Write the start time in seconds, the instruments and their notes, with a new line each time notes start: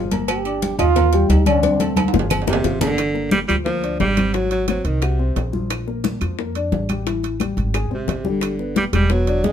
Already playing: upright bass G1
0.11 grand piano A#3 A#4 A#5, cowbell, high conga, low agogo
0.28 trombone G4, cowbell, high conga, low agogo, claves
0.45 grand piano D4 D5 D6, high conga, low agogo
0.62 cowbell, high conga, low timbale
0.79 upright bass D#2, grand piano D#4 D#5 D#6, trombone F4, cowbell, high conga, low conga, low agogo, claves
0.96 grand piano A#3 A#4 A#5, cowbell, high conga, low conga, low agogo
1.13 grand piano G3 G4 G5, cowbell, high conga
1.29 upright bass D2, trombone D#4, cowbell, high conga, low timbale, low agogo
1.46 grand piano D3 D4 D5, trombone C#4, cowbell, high conga, low agogo, claves
1.63 grand piano D3 D4 D5, trombone C4, cowbell, high conga
1.79 grand piano A3 A4 A5, cowbell, high conga, low agogo
1.96 cowbell, high conga, high timbale, low agogo, claves
2.08 high timbale
2.13 upright bass G1, grand piano F3 F4 F5, high bongo, low conga
2.19 low timbale
2.30 cowbell, low bongo, low conga, low agogo, claves
2.42 low timbale
2.47 tenor saxophone C3, grand piano A#3 A#4 A#5, high bongo, low conga, low agogo
2.53 low timbale
2.64 upright bass G1, grand piano F3 F4 F5, cowbell, low bongo, low conga, low timbale
2.80 tenor saxophone D3, grand piano A#3 A#4 A#5, cowbell, low bongo, low conga, low agogo
2.87 low timbale
2.98 high bongo, high conga, high timbale, claves
3.14 grand piano A#3 A#4, high bongo, high conga
3.31 tenor saxophone G3, high bongo, high conga, high timbale, low timbale
3.48 upright bass D2, grand piano F3 F4, tenor saxophone G3, high bongo, high timbale, claves
3.65 tenor saxophone F3, grand piano A#3 A#4, high bongo, high conga
3.82 grand piano D4 D5, high conga, high timbale
4.00 upright bass G#1, tenor saxophone G3, high bongo, low bongo, high conga, low timbale
4.17 grand piano C4 C5, high bongo, high conga, high timbale, claves
4.34 tenor saxophone F#3, grand piano F#3 F#4, high bongo, high conga, high timbale
4.51 tenor saxophone F#3, high bongo, high conga, high timbale
4.68 tenor saxophone F#3, grand piano C4 C5, high bongo, high conga, high timbale, low timbale, claves
4.85 upright bass C2, tenor saxophone D#3, high bongo, high conga, high timbale
5.01 tenor saxophone C3, grand piano F#4 F#5, high bongo, high conga, high timbale, claves
5.19 grand piano C4 C5, high conga
5.36 upright bass A#1, high bongo, low bongo, high conga, high timbale, low timbale
5.53 grand piano F3 F4, high bongo, high conga
5.70 high bongo, high conga, high timbale, claves
5.87 grand piano A#3 A#4, high bongo, high conga
6.04 high bongo, high conga, high timbale, low timbale
6.21 upright bass F2, grand piano F3 F4, high bongo, high timbale, claves
6.39 grand piano A#3 A#4, high bongo, high conga
6.55 grand piano D4 D5, high conga, high timbale
6.72 upright bass A1, high bongo, low bongo, high conga, low timbale
6.89 grand piano G3 G4, high bongo, high conga, high timbale, claves
7.06 grand piano E3 E4, high bongo, high conga, high timbale
7.23 high bongo, high conga, high timbale
7.40 grand piano G3 G4, high bongo, high conga, high timbale, low timbale, claves
7.57 upright bass G#1, high bongo, high conga, high timbale
7.74 grand piano G#4 G#5, high bongo, high conga, high timbale, claves
7.90 upright bass G#1, tenor saxophone C3, grand piano C4 C5, high conga
8.08 upright bass G1, high bongo, low bongo, high conga, high timbale, low timbale
8.25 tenor saxophone D3, grand piano G3 G4, high bongo, high conga
8.41 high bongo, high conga, high timbale, claves
8.59 grand piano B3 B4, high bongo, high conga
8.76 tenor saxophone G3, high bongo, high conga, high timbale, low timbale
8.93 upright bass E1, tenor saxophone G3, grand piano G#3 G#4, high bongo, high timbale, claves
9.10 tenor saxophone F#3, grand piano B3 B4, high bongo, high conga
9.27 grand piano D4 D5, high conga, high timbale
9.43 upright bass A1, tenor saxophone G#3, high bongo, low bongo, high conga, low timbale